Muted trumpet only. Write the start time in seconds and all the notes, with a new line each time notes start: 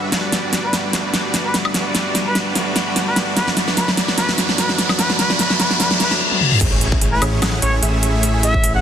0.64 B4
1.45 B4
2.26 B4
3.07 B4
3.37 B4
3.77 B4
4.18 B4
4.58 B4
4.99 B4
5.19 B4
5.39 B4
5.60 B4
5.80 B4
6.00 B4
7.12 B4
7.62 C#5
8.43 E5
8.75 F#5